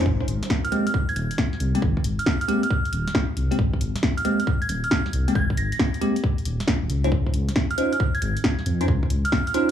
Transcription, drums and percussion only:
0.06 kick loud
0.21 kick medium
0.28 closed hi-hat loud
0.43 snare medium
0.43 closed hi-hat medium
0.50 kick loud
0.50 snare loud
0.65 closed hi-hat medium
0.72 closed hi-hat medium
0.87 closed hi-hat medium
0.94 kick loud
1.09 closed hi-hat soft
1.16 closed hi-hat loud
1.31 closed hi-hat medium
1.38 kick loud
1.38 snare loud
1.53 snare soft
1.60 closed hi-hat medium
1.75 closed hi-hat medium
1.82 kick loud
1.97 kick medium
2.04 closed hi-hat loud
2.19 closed hi-hat medium
2.26 kick loud
2.26 snare loud
2.41 closed hi-hat medium
2.49 closed hi-hat loud
2.63 closed hi-hat medium
2.71 kick loud
2.85 closed hi-hat soft
2.93 closed hi-hat loud
3.08 snare medium
3.08 closed hi-hat medium
3.15 kick loud
3.15 snare loud
3.37 closed hi-hat medium
3.52 closed hi-hat medium
3.59 kick loud
3.73 kick medium
3.81 closed hi-hat loud
3.96 snare medium
3.96 closed hi-hat medium
4.03 kick loud
4.03 snare loud
4.18 closed hi-hat soft
4.25 closed hi-hat medium
4.40 closed hi-hat medium
4.47 kick loud
4.62 closed hi-hat soft
4.69 closed hi-hat loud
4.84 closed hi-hat medium
4.91 kick loud
4.91 snare loud
5.06 snare soft
5.13 closed hi-hat medium
5.28 closed hi-hat medium
5.35 kick loud
5.50 kick medium
5.57 closed hi-hat loud
5.72 closed hi-hat medium
5.79 kick loud
5.79 snare loud
5.94 closed hi-hat soft
6.02 closed hi-hat medium
6.16 closed hi-hat medium
6.24 kick loud
6.38 closed hi-hat soft
6.45 closed hi-hat loud
6.60 snare medium
6.60 closed hi-hat medium
6.68 kick loud
6.68 snare loud
6.90 closed hi-hat medium
7.04 closed hi-hat medium
7.12 kick loud
7.26 kick medium
7.34 closed hi-hat loud
7.49 snare soft
7.49 closed hi-hat medium
7.56 kick loud
7.56 snare loud
7.71 closed hi-hat medium
7.78 closed hi-hat medium
7.93 closed hi-hat medium
8.00 kick loud
8.15 closed hi-hat soft
8.22 closed hi-hat loud
8.37 closed hi-hat medium
8.44 kick loud
8.44 snare loud
8.59 snare soft
8.66 closed hi-hat medium
8.81 closed hi-hat medium
8.88 kick loud
9.03 kick medium
9.10 closed hi-hat loud
9.25 closed hi-hat medium
9.32 kick loud
9.32 snare loud
9.47 closed hi-hat medium
9.54 closed hi-hat medium

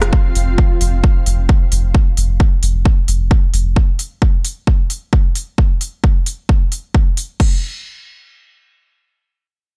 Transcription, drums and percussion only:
0.02 cross-stick medium
0.02 closed hi-hat soft
0.13 kick loud
0.35 open hi-hat medium
0.58 kick loud
0.81 open hi-hat loud
1.04 kick loud
1.26 open hi-hat loud
1.49 kick loud
1.72 open hi-hat loud
1.95 kick loud
2.17 open hi-hat loud
2.40 kick loud
2.63 open hi-hat loud
2.85 kick loud
3.08 open hi-hat loud
3.31 kick loud
3.54 open hi-hat medium
3.76 kick loud
3.99 open hi-hat loud
4.22 kick loud
4.45 open hi-hat loud
4.67 kick loud
4.90 open hi-hat medium
5.13 kick loud
5.35 open hi-hat loud
5.58 kick loud
5.81 open hi-hat medium
6.04 kick loud
6.26 open hi-hat loud
6.49 kick loud
6.72 open hi-hat medium
6.94 kick loud
7.17 open hi-hat loud
7.40 kick loud
7.40 crash medium

